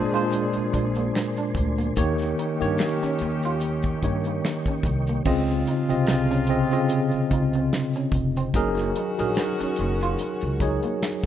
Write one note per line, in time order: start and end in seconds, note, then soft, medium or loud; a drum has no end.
0.00 0.13 A#2 loud
0.00 1.52 F3 medium
0.00 0.14 G#3 loud
0.00 0.15 D4 medium
0.00 1.52 D4 medium
0.00 1.52 G#4 medium
0.00 5.22 A#4 medium
0.00 0.15 C5 loud
0.00 1.94 D5 medium
0.00 1.99 D5 medium
0.00 1.93 G#5 medium
0.00 1.94 C6 medium
0.13 1.44 A#2 medium
0.13 1.44 G#3 medium
0.13 1.44 D4 medium
0.13 0.25 F4 medium
0.13 1.44 C5 medium
0.13 closed hi-hat soft
0.13 maracas soft
0.30 muted clean electric guitar stroke soft
0.30 closed hi-hat medium
0.30 maracas medium
0.53 muted upright bass stroke soft
0.53 closed hi-hat soft
0.53 maracas soft
0.73 1.09 A#1 medium
0.73 0.87 D4 medium
0.73 kick medium
0.73 closed hi-hat medium
0.73 maracas soft
0.95 1.08 A#3 medium
0.95 closed hi-hat soft
0.95 maracas soft
1.15 finger snap medium
1.15 snare loud
1.15 closed hi-hat medium
1.15 maracas medium
1.37 1.49 D4 medium
1.37 maracas medium
1.55 1.91 D2 medium
1.55 muted clean electric guitar stroke soft
1.55 kick medium
1.55 closed hi-hat medium
1.78 1.90 A#3 medium
1.78 closed hi-hat soft
1.78 maracas soft
1.96 2.32 D#2 loud
1.96 2.46 D#3 loud
1.96 4.81 D#3 medium
1.96 2.47 A#3 medium
1.96 4.81 C#4 medium
1.96 4.81 G4 medium
1.96 2.47 G4 medium
1.96 2.47 C#5 loud
1.96 5.23 D#5 medium
1.96 5.23 G5 medium
1.96 5.22 C#6 medium
1.96 kick loud
1.96 closed hi-hat medium
1.96 maracas medium
2.18 snare soft
2.18 closed hi-hat soft
2.18 maracas medium
2.39 2.53 D#4 medium
2.39 closed hi-hat medium
2.39 maracas soft
2.60 2.77 G2 medium
2.60 3.74 D#3 medium
2.60 3.74 A#3 medium
2.60 3.74 G4 medium
2.60 3.75 C#5 medium
2.60 closed hi-hat soft
2.60 maracas medium
2.78 finger snap medium
2.78 snare loud
2.78 closed hi-hat medium
2.78 maracas medium
3.02 3.14 C#4 medium
3.02 muted upright bass stroke soft
3.02 snare soft
3.02 closed hi-hat soft
3.02 maracas medium
3.18 3.91 D#2 medium
3.18 muted clean electric guitar stroke soft
3.18 closed hi-hat medium
3.18 maracas medium
3.42 3.56 F4 medium
3.42 closed hi-hat soft
3.42 maracas soft
3.60 closed hi-hat loud
3.60 maracas medium
3.64 muted clean electric guitar stroke soft
3.82 kick medium
3.82 closed hi-hat soft
3.82 maracas soft
4.02 4.38 G2 medium
4.02 5.02 D#3 medium
4.02 5.02 A#3 medium
4.02 4.17 D#4 medium
4.02 5.02 G4 medium
4.02 5.02 C#5 medium
4.02 kick medium
4.02 closed hi-hat medium
4.02 maracas soft
4.24 4.38 A#3 medium
4.24 closed hi-hat soft
4.24 maracas soft
4.45 finger snap medium
4.45 snare medium
4.45 closed hi-hat medium
4.45 maracas medium
4.65 4.79 C#4 medium
4.65 kick medium
4.65 closed hi-hat soft
4.65 maracas medium
4.83 5.20 C2 medium
4.83 muted clean electric guitar stroke soft
4.83 kick medium
4.83 closed hi-hat medium
4.83 maracas soft
5.07 5.20 A#3 medium
5.07 closed hi-hat soft
5.07 maracas soft
5.25 5.61 C#2 loud
5.25 8.09 C3 medium
5.25 5.75 C#3 loud
5.25 8.09 G#3 medium
5.25 5.75 C4 loud
5.25 8.09 F4 medium
5.25 5.76 F4 medium
5.25 5.76 D#5 loud
5.25 kick loud
5.25 crash loud
5.25 maracas medium
5.47 snare soft
5.47 closed hi-hat soft
5.47 maracas medium
5.67 5.81 D#4 medium
5.67 closed hi-hat medium
5.67 maracas soft
5.89 6.60 C2 medium
5.89 6.37 C3 medium
5.89 6.37 C4 medium
5.89 6.38 F4 medium
5.89 6.38 D#5 medium
5.89 closed hi-hat soft
5.89 maracas medium
6.06 finger snap medium
6.06 snare loud
6.06 closed hi-hat medium
6.06 maracas medium
6.30 6.42 C#4 medium
6.30 snare soft
6.30 maracas medium
6.47 6.67 C#3 medium
6.47 6.67 C4 medium
6.47 6.67 F4 medium
6.47 6.67 D#5 loud
6.47 muted clean electric guitar stroke soft
6.47 closed hi-hat medium
6.71 8.01 C#3 medium
6.71 8.02 C4 medium
6.71 6.84 F4 medium
6.71 8.02 F4 medium
6.71 8.02 D#5 medium
6.71 closed hi-hat soft
6.71 maracas soft
6.89 muted clean electric guitar stroke soft
6.89 closed hi-hat loud
6.89 maracas medium
7.11 muted upright bass stroke soft
7.11 closed hi-hat soft
7.11 maracas soft
7.31 7.67 C#2 medium
7.31 7.46 D#4 medium
7.31 kick medium
7.31 closed hi-hat medium
7.31 maracas soft
7.53 7.66 C4 medium
7.53 closed hi-hat soft
7.53 maracas soft
7.73 finger snap medium
7.73 snare medium
7.73 closed hi-hat medium
7.73 maracas medium
7.93 8.07 C#4 medium
7.93 closed hi-hat soft
7.93 maracas medium
8.12 8.48 F1 medium
8.12 muted clean electric guitar stroke soft
8.12 kick loud
8.12 closed hi-hat medium
8.37 8.48 C4 medium
8.37 closed hi-hat soft
8.37 maracas soft
8.54 8.90 F#1 loud
8.54 11.26 D#3 medium
8.54 9.04 F#3 loud
8.54 11.26 C#4 medium
8.54 9.04 D#4 loud
8.54 11.26 F#4 medium
8.54 9.05 G#4 loud
8.54 9.05 A#4 loud
8.54 kick loud
8.54 closed hi-hat medium
8.54 maracas medium
8.75 snare soft
8.75 closed hi-hat soft
8.75 maracas medium
8.96 9.10 D#4 medium
8.96 closed hi-hat medium
8.96 maracas soft
9.18 9.35 A#1 medium
9.18 10.32 F#3 medium
9.18 10.32 D#4 medium
9.18 10.32 G#4 medium
9.18 10.32 A#4 loud
9.18 closed hi-hat medium
9.18 maracas medium
9.35 finger snap medium
9.35 snare loud
9.35 closed hi-hat medium
9.35 maracas medium
9.59 9.72 C#4 medium
9.59 muted upright bass stroke soft
9.59 snare soft
9.59 closed hi-hat soft
9.59 maracas medium
9.76 10.14 F#1 medium
9.76 closed hi-hat medium
9.81 muted clean electric guitar stroke soft
10.00 10.14 F4 medium
10.00 closed hi-hat soft
10.00 maracas soft
10.18 muted upright bass stroke medium
10.18 muted clean electric guitar stroke medium
10.18 closed hi-hat loud
10.18 maracas medium
10.41 10.77 C#2 medium
10.41 maracas soft
10.60 11.26 F#3 medium
10.60 11.26 D#4 medium
10.60 10.75 D#4 medium
10.60 11.26 G#4 medium
10.60 11.26 C#5 medium
10.60 kick medium
10.60 closed hi-hat medium
10.60 maracas soft
10.83 10.95 A#3 medium
10.83 closed hi-hat soft
10.83 maracas soft
11.02 finger snap medium
11.02 snare loud
11.02 closed hi-hat medium
11.02 maracas medium